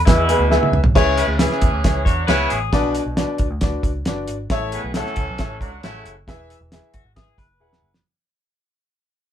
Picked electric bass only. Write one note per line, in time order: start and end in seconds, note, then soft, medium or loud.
0.07 0.33 E2 loud
0.39 0.57 D2 medium
0.72 0.81 C#2 medium
0.83 0.92 B1 medium
0.95 1.21 C#2 loud
1.27 1.45 D2 medium
1.62 1.70 E2 medium
1.72 1.81 D2 loud
1.85 2.06 C#2 loud
2.06 2.23 E2 medium
2.28 2.45 C#2 medium
2.52 2.68 A1 medium
2.72 2.98 B1 loud
3.06 3.23 B1 medium
3.40 3.48 C#2 medium
3.50 3.76 D2 loud
3.84 4.01 C#2 medium
4.06 4.28 F#1 medium
4.28 4.46 G#1 medium
4.50 4.76 A1 loud
4.84 5.01 B1 medium
5.17 5.25 C#2 loud
5.29 5.37 B1 loud
5.39 5.61 A1 loud
5.61 5.78 C#2 medium
5.84 6.01 A1 medium
6.05 6.23 F#1 medium
6.27 6.54 E1 loud
6.61 6.78 E1 medium
6.94 7.03 F#1 medium
7.05 7.31 G#1 loud
7.38 7.60 F#1 loud
7.60 7.78 E1 medium
7.82 8.00 F#1 medium